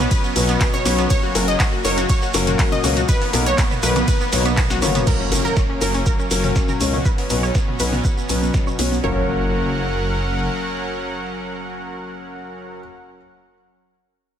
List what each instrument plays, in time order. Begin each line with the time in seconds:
Already playing: supersaw synth F#3 B3 C#4
0.11 synth pluck B4, kick, closed hi-hat, ride, shaker, shekere
0.24 synth pluck B3, shekere
0.36 detuned saw bass B1, grand piano B2 F#3 B3 C#4 B4, open hi-hat, shaker, shekere
0.49 synth pluck B3, closed hi-hat, shekere
0.61 synth pluck B3, kick, snare, clap, closed hi-hat, ride, shaker, shekere
0.73 synth pluck C#5, high conga, shekere
0.85 detuned saw bass B1, grand piano F#3 B3 C#4 C#5, synth pluck B3, open hi-hat, high woodblock, shekere
0.98 synth pluck B3, snare, closed hi-hat, shekere
1.10 supersaw synth A#3, synth pluck C#5, kick, closed hi-hat, ride, shekere, shaker
1.23 synth pluck F#4
1.35 detuned saw bass F#1, grand piano F#3 A#3 C#4 A#4, synth pluck F#4, open hi-hat, high conga, shaker, shekere
1.48 synth pluck D#5, closed hi-hat, shekere
1.60 synth pluck F#4, kick, snare, clap, closed hi-hat, ride, shaker, shekere
1.73 synth pluck F#4
1.84 detuned saw bass F#1, grand piano F#3 A#3 C#4 A#4, synth pluck C#5, snare, open hi-hat, shekere, shaker
1.97 synth pluck F#4, closed hi-hat, high conga, shekere
2.09 synth pluck C#5, kick, closed hi-hat, ride, high woodblock, shekere, shaker
2.22 synth pluck F#4, shekere
2.34 detuned saw bass F#1, grand piano F#3 A#3 C#4 A#4, snare, open hi-hat, high woodblock, shekere, shaker
2.47 synth pluck F#4, closed hi-hat, mid tom, shekere
2.59 synth pluck F#4, kick, snare, clap, closed hi-hat, ride, shekere, shaker
2.72 synth pluck D#5, mid tom, high conga, shekere
2.84 detuned saw bass C#2, grand piano B2 F#3 A#3 C#4 C#5, synth pluck F#4, open hi-hat, high woodblock, shaker, shekere
2.97 synth pluck F#4, closed hi-hat, shekere
3.09 supersaw synth D#3 A#3 B3, synth pluck B4, kick, closed hi-hat, ride, shekere, shaker
3.22 synth pluck B3, snare, open hi-hat
3.33 detuned saw bass B1, grand piano B2 F#3 B3 D#4 A#4, synth pluck B3, clap, open hi-hat, high conga, shaker, shekere
3.46 synth pluck C#5, closed hi-hat, shekere
3.58 synth pluck B3, kick, snare, clap, closed hi-hat, ride, shaker, shekere
3.71 synth pluck B3, mid tom, shekere
3.83 detuned saw bass B1, grand piano B2 F#3 B3 D#4 A#4, synth pluck B4, open hi-hat, shekere, shaker
3.96 synth pluck B3, snare, closed hi-hat, mid tom, high conga, high woodblock, shekere
4.08 synth pluck B4, kick, closed hi-hat, ride, shaker, shekere
4.21 synth pluck B3, shekere
4.32 detuned saw bass B1, grand piano B2 F#3 B3 D#4 C#5, snare, open hi-hat, shekere, shaker
4.46 synth pluck B3, closed hi-hat, high woodblock, shekere
4.57 synth pluck B3, kick, clap, closed hi-hat, open hi-hat, ride, shekere
4.70 synth pluck F#4, snare, high tom, high conga, shaker, shekere
4.82 detuned saw bass F#1, grand piano F#3 A#3 C#4 C#5, synth pluck B3, open hi-hat, mid tom, high woodblock, shekere
4.95 synth pluck B3, closed hi-hat, mid tom, open hi-hat, shekere
5.07 supersaw synth F#3 A#3 C#4, synth pluck A#4, kick, crash, impact, shekere, shaker
5.20 synth pluck C#4
5.32 detuned saw bass F#1, grand piano F#3 A#3 C#4 A#4, synth pluck C#4, open hi-hat, high conga, shaker, shekere
5.45 synth pluck A#4, shekere
5.57 synth pluck C#4, kick, snare, shekere, shaker
5.70 synth pluck C#4
5.81 detuned saw bass F#1, grand piano F#3 A#3 C#4 A#4, synth pluck A#4, snare, open hi-hat, shekere, shaker
5.94 synth pluck C#4, closed hi-hat, high conga, shekere
6.06 synth pluck A#4, kick, shekere, shaker
6.19 synth pluck C#4, shekere
6.31 detuned saw bass F#1, grand piano F#3 A#3 C#4 A#4, snare, open hi-hat, shekere, shaker
6.44 synth pluck C#4, closed hi-hat, mid tom, shekere
6.56 synth pluck C#4, kick, snare, shaker, shekere
6.68 synth pluck A#4, mid tom, high conga, shekere
6.81 detuned saw bass C#2, grand piano B2 F#3 A#3 C#4 C#5, synth pluck C#4, open hi-hat, shekere, shaker
6.94 synth pluck C#4, shekere
7.05 supersaw synth B3 C#4, synth pluck B4, kick, shaker, shekere
7.18 synth pluck B3, snare, open hi-hat
7.30 detuned saw bass B1, grand piano B2 F#3 B3 C#4 B4, synth pluck B3, open hi-hat, high conga, shekere, shaker
7.43 synth pluck C#5, shekere
7.55 synth pluck B3, kick, snare, shaker, shekere
7.68 synth pluck B3, mid tom
7.79 detuned saw bass B1, grand piano B2 F#3 B3 C#4 B4, synth pluck B4, open hi-hat, shekere, shaker
7.92 synth pluck B3, snare, mid tom, high conga, shekere
8.05 synth pluck B4, kick, shaker, shekere
8.18 synth pluck B3, shekere
8.29 detuned saw bass B1, grand piano B2 F#3 B3 C#4 B4, open hi-hat, shekere, shaker
8.42 synth pluck B3, shekere
8.54 synth pluck B3, kick, snare, shaker, shekere
8.67 synth pluck C#5, high conga, shekere
8.79 detuned saw bass B1, grand piano F#3 B3 C#4 C#5, synth pluck B3, open hi-hat, shekere
8.92 synth pluck B3, snare, shekere
9.04 detuned saw bass F#1, grand piano F#3 A#3 C#4 A#4, supersaw synth F#3 C#4 A#4 F#5, synth pluck C#5, impact